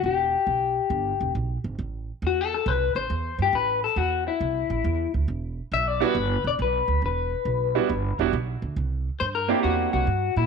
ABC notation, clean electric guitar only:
X:1
M:4/4
L:1/8
Q:"Swing" 1/4=137
K:Em
V:1 name="Clean electric guitar"
G6 z2 | z2 (3F A A B c2 G | B A F E4 z | z2 (3e d B- B d B2 |
B6 z2 | z2 (3c _B G F F2 E |]